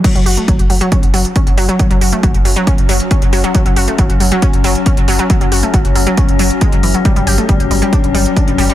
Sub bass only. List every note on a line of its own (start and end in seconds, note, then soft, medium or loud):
0.15 0.26 F#1 medium
0.26 0.37 F#1 loud
0.48 0.59 F#1 medium
0.59 0.69 F#1 medium
0.70 0.81 F#1 loud
1.03 1.13 F#1 medium
1.14 1.25 F#1 loud
1.47 1.57 F#1 medium
1.58 1.69 F#1 loud
1.91 2.01 F#1 medium
2.02 2.12 F#1 loud
2.23 2.34 F#1 medium
2.35 2.45 F#1 medium
2.45 2.56 F#1 loud
2.78 2.88 F#1 medium
2.89 3.00 F#1 loud
3.22 3.32 F#1 medium
3.33 3.44 F#1 loud
3.66 3.76 F#1 medium
3.77 3.88 F#1 loud
3.99 4.09 F#1 medium
4.10 4.20 F#1 medium
4.20 4.31 F#1 loud
4.54 4.63 F#1 medium
4.64 4.75 F#1 loud
4.97 5.07 F#1 medium
5.08 5.19 F#1 loud
5.41 5.51 F#1 medium
5.52 5.63 F#1 loud
5.74 5.84 F#1 medium
5.85 5.95 F#1 medium
5.95 6.06 F#1 loud
6.29 6.39 F#1 medium
6.39 6.50 F#1 loud
6.72 6.83 F#1 medium
6.83 6.94 F#1 loud
7.16 7.26 G1 medium
7.27 7.38 G1 loud
7.49 7.59 G1 medium
7.60 7.70 G1 medium
7.71 7.82 G1 loud
8.04 8.14 G1 medium
8.15 8.26 G1 loud
8.48 8.58 G1 medium
8.58 8.69 G1 loud